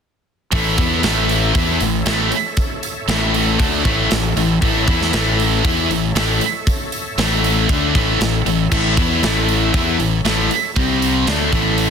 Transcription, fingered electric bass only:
0.53 0.76 A1 medium
0.78 1.02 E2 medium
1.03 1.51 A1 medium
1.55 1.79 E2 medium
1.81 2.05 A1 medium
2.06 2.30 A1 loud
3.08 3.56 A1 loud
3.60 3.83 D2 medium
3.85 4.09 A1 medium
4.11 4.35 A1 medium
4.37 4.60 A1 medium
4.62 4.86 A1 medium
4.88 5.11 E2 loud
5.13 5.61 A1 loud
5.90 6.14 A1 medium
6.15 6.39 A1 loud
7.18 7.65 A1 loud
7.69 7.93 D2 medium
7.95 8.19 A1 medium
8.20 8.44 A1 medium
8.46 8.70 A1 medium
8.72 8.95 A1 medium
8.97 9.21 E2 medium
9.23 9.70 A1 medium
9.74 9.97 E2 loud
9.99 10.23 A1 medium
10.24 10.48 A1 loud
10.76 11.23 C2 loud
11.27 11.51 D2 medium
11.52 11.90 A1 loud

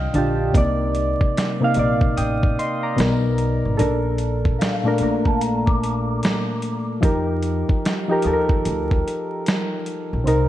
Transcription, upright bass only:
0.15 0.50 A#1 medium
0.55 1.13 C2 medium
1.76 2.12 A#1 medium
2.17 2.53 A1 medium
2.98 3.57 B1 medium
3.65 3.77 G#1 medium
3.80 4.51 A#1 loud
5.01 6.18 A#1 medium
7.03 7.62 F2 medium
8.25 8.61 D#2 medium
8.66 9.01 D2 medium
10.13 10.27 A#1 medium
10.27 10.49 C2 medium

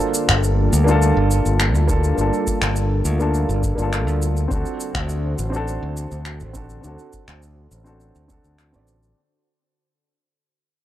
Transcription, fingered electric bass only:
0.29 0.67 G1 medium
0.73 1.11 D2 loud
1.17 1.39 G1 medium
1.46 1.74 G1 medium
1.74 2.13 D2 medium
2.18 2.29 G1 medium
2.62 3.00 G1 medium
3.05 3.44 D2 loud
3.49 3.72 G1 medium
3.78 4.07 G1 medium
4.07 4.46 D2 medium
4.51 4.63 D2 medium
4.95 5.33 D2 loud
5.39 5.77 A1 loud
5.83 6.05 D2 medium
6.12 6.42 D2 medium
6.41 6.79 A1 medium
6.84 6.96 D2 medium
7.28 7.66 D2 medium
7.71 8.10 A1 medium
8.16 8.38 D2 medium
8.45 8.76 D2 medium
8.74 9.12 A1 medium

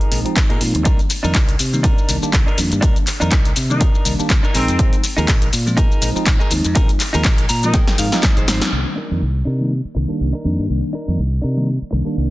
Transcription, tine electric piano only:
0.11 0.23 F3 medium
0.11 0.23 G#3 medium
0.11 0.24 C4 medium
0.11 0.24 D#4 loud
0.25 0.47 F3 medium
0.25 0.47 G#3 medium
0.25 0.47 C4 medium
0.25 0.47 D#4 loud
0.60 0.82 F3 medium
0.60 0.82 G#3 medium
0.60 0.82 C4 medium
0.60 0.82 D#4 medium
0.85 1.08 D#3 medium
0.85 1.08 G3 medium
1.23 1.36 D#3 medium
1.23 1.36 G3 medium
1.23 1.36 A#3 medium
1.23 1.36 D#4 medium
1.73 1.86 D#3 medium
1.73 1.86 G3 medium
1.73 1.86 A#3 medium
1.73 1.86 D#4 medium
2.08 2.20 D#3 medium
2.08 2.20 G3 medium
2.08 2.21 A#3 medium
2.08 2.21 D4 loud
2.22 2.44 D#3 medium
2.22 2.44 G3 medium
2.22 2.44 A#3 medium
2.22 2.44 D4 loud
2.57 2.79 D#3 medium
2.57 2.79 G3 medium
2.57 2.79 A#3 medium
2.57 2.79 D4 medium
3.20 3.33 D#3 medium
3.20 3.33 G3 medium
3.20 3.33 A#3 medium
3.20 3.33 D#4 medium
3.70 3.82 D#3 medium
3.70 3.82 G3 medium
3.70 3.82 A#3 medium
3.70 3.83 D#4 medium
4.05 4.17 D#3 medium
4.05 4.17 G3 medium
4.05 4.17 A#3 medium
4.05 4.17 D4 loud
4.19 4.41 D#3 medium
4.19 4.41 G3 medium
4.19 4.41 A#3 medium
4.19 4.41 D4 loud
4.54 4.76 F3 medium
4.54 4.76 G#3 medium
4.54 4.76 C4 medium
4.54 4.76 D#4 medium
4.79 5.02 G#3 medium
4.79 5.02 C4 medium
4.79 5.02 D#4 medium
5.17 5.30 F3 medium
5.17 5.30 G#3 medium
5.17 5.30 C4 medium
5.17 5.30 F4 medium
5.66 5.79 F3 medium
5.66 5.79 G#3 medium
5.66 5.79 C4 medium
5.66 5.79 F4 medium
6.01 6.14 F3 medium
6.01 6.14 G#3 medium
6.01 6.14 C4 medium
6.01 6.14 D#4 loud
6.15 6.37 F3 medium
6.15 6.37 G#3 medium
6.15 6.38 C4 medium
6.15 6.38 D#4 loud
6.51 6.73 F3 medium
6.51 6.73 G#3 medium
6.51 6.73 C4 medium
6.51 6.73 D#4 loud
6.75 6.98 F3 medium
6.75 6.98 G#3 medium
6.75 6.98 C4 medium
6.75 6.98 D#4 medium
7.14 7.26 F3 medium
7.14 7.27 G#3 medium
7.14 7.27 C4 medium
7.14 7.27 F4 medium
7.63 7.76 F3 medium
7.63 7.76 G#3 medium
7.63 7.76 C4 medium
7.63 7.76 F4 medium
7.98 8.10 F3 medium
7.98 8.11 G#3 medium
7.98 8.11 C4 medium
7.98 8.11 D#4 loud
8.12 8.34 F3 medium
8.12 8.34 G#3 medium
8.12 8.34 C4 medium
8.12 8.35 D#4 loud
8.48 8.69 F3 medium
8.48 8.69 G#3 medium
8.48 8.70 C4 medium
8.48 8.70 D#4 loud
8.72 8.95 D#3 medium
8.72 8.95 G3 medium
8.72 8.95 A#3 medium
8.72 8.95 D4 medium
9.11 9.23 D#3 medium
9.11 9.23 G3 medium
9.11 9.23 A#3 medium
9.11 9.24 D#4 medium
9.60 9.72 D#3 medium
9.60 9.73 G3 medium
9.60 9.73 A#3 medium
9.60 9.73 D#4 medium
9.95 10.07 D#3 medium
9.95 10.07 G3 medium
9.95 10.07 A#3 medium
9.95 10.07 D4 medium
10.08 10.31 D#3 medium
10.08 10.31 G3 medium
10.08 10.31 A#3 medium
10.08 10.31 D4 medium
10.44 10.66 D#3 medium
10.44 10.66 G3 medium
10.44 10.66 A#3 medium
10.44 10.66 D4 medium
10.69 10.91 D#3 medium
10.69 10.92 G3 medium
10.69 10.92 A#3 medium
10.69 10.92 D4 medium
11.07 11.20 D#3 medium
11.07 11.20 G3 medium
11.07 11.20 A#3 medium
11.07 11.20 D#4 medium
11.56 11.69 D#3 medium
11.56 11.69 G3 medium
11.56 11.69 A#3 medium
11.56 11.69 D#4 medium
11.92 12.04 D#3 medium
11.92 12.04 G3 medium
11.92 12.04 A#3 medium
11.92 12.04 D4 medium
12.05 12.27 D#3 medium
12.05 12.28 G3 medium
12.05 12.28 A#3 medium
12.05 12.28 D4 medium

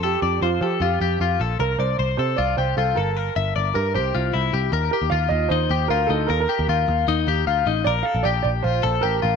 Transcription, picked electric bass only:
0.00 0.15 F2 medium
0.22 0.38 F2 medium
0.41 0.58 F2 medium
0.61 0.77 F3 loud
0.80 0.97 F2 medium
1.00 1.17 F2 medium
1.20 1.36 F2 medium
1.40 1.56 A#1 medium
1.59 1.76 C2 medium
1.78 1.95 C2 medium
1.99 2.15 C2 medium
2.18 2.35 C3 medium
2.38 2.55 C2 medium
2.57 2.74 C2 medium
2.77 2.93 C2 medium
2.96 3.29 G1 medium
3.36 3.52 G1 medium
3.56 3.72 G1 medium
3.75 3.96 G2 medium
3.95 4.11 C2 medium
4.15 4.31 C2 medium
4.34 4.50 C2 medium
4.53 4.70 C2 medium
4.72 4.89 D#2 loud
5.01 5.10 D#2 medium
5.11 5.28 D#2 loud
5.30 5.47 D#2 loud
5.50 5.67 D#2 medium
5.69 5.86 D#2 loud
5.89 6.06 D2 medium
6.09 6.26 D2 medium
6.29 6.45 D#2 medium
6.59 6.67 D#2 medium
6.68 6.85 D#2 medium
6.88 7.04 D#2 loud
7.08 7.24 D#2 medium
7.27 7.43 D#2 loud
7.47 7.63 D2 medium
7.66 7.82 A1 medium
7.85 8.02 A#1 loud
8.14 8.23 A#1 medium
8.24 8.40 A#1 loud
8.44 8.60 A#1 loud
8.64 8.80 A#1 medium
8.84 9.00 A#1 loud
9.04 9.19 A1 medium
9.23 9.36 A1 medium

